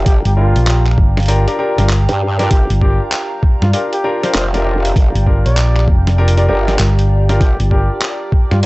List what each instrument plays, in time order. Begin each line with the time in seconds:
Already playing: analog synth pad G4 D5 F5 A#5, ambient pad G5
0.06 wobble bass G1, trumpet G4, kick, closed hi-hat
0.25 fingered electric bass G1, trumpet G4, closed hi-hat
0.36 grand piano D4 F4 G4 A#4, trumpet F4
0.56 fingered electric bass A#1, closed hi-hat
0.67 clap, closed hi-hat
0.87 clap
0.98 fingered electric bass G1, kick
1.17 snare, closed hi-hat
1.20 closed hi-hat
1.23 closed hi-hat
1.26 grand piano D4 F4 G4 A#4, closed hi-hat
1.28 closed hi-hat
1.47 grand piano D4 F4 G4 A#4, closed hi-hat
1.59 grand piano D4 F4 G4 A#4
1.78 fingered electric bass G1, grand piano D4 F4 G4 A#4, snare, closed hi-hat
1.90 clap, closed hi-hat
2.09 wobble bass G2, closed hi-hat
2.39 grand piano D4 F4 G4 A#4, snare, closed hi-hat
2.51 wobble bass G1, trumpet G4, kick, closed hi-hat
2.70 fingered electric bass G1, closed hi-hat
2.81 grand piano D4 F4 G4 A#4, trumpet G4, kick
3.12 clap, closed hi-hat
3.43 kick
3.62 fingered electric bass G2, trumpet F4, snare
3.73 grand piano D4 F4 G4 A#4, trumpet F4, closed hi-hat
3.93 trumpet G4, closed hi-hat
4.04 grand piano D4 F4 G4 A#4
4.23 grand piano D4 F4 G4 A#4, trumpet C5, snare, closed hi-hat
4.34 wobble bass F1, trumpet C5, clap, closed hi-hat
4.54 grand piano D4 F4 G4 A#4, closed hi-hat
4.65 grand piano D4 F4 G4 A#4
4.85 closed hi-hat
4.96 wobble bass G1, kick, closed hi-hat
5.15 fingered electric bass G1, closed hi-hat
5.26 grand piano D4 F4 G4 A#4, kick
5.46 fingered electric bass A#1, trumpet D5, closed hi-hat
5.57 clap, closed hi-hat
5.77 clap
5.88 fingered electric bass F1, kick
6.07 snare, closed hi-hat
6.18 grand piano D4 F4 G4 A#4, trumpet D5
6.28 closed hi-hat
6.37 grand piano D4 F4 G4 A#4, trumpet D5, closed hi-hat
6.49 wobble bass G1, grand piano D4 F4 G4 A#4, trumpet D5
6.68 grand piano D4 F4 G4 A#4, snare, closed hi-hat
6.79 fingered electric bass G1, clap, closed hi-hat
6.99 closed hi-hat
7.29 grand piano D4 F4 G4 A#4, snare, closed hi-hat
7.40 wobble bass G1, trumpet G4, analog synth pad G5 D6, kick, closed hi-hat
7.60 fingered electric bass G1, closed hi-hat
7.71 grand piano D4 F4 G4 A#4, trumpet G4, kick
8.02 clap, closed hi-hat
8.32 kick
8.51 fingered electric bass G2, trumpet F4, snare
8.63 trumpet F4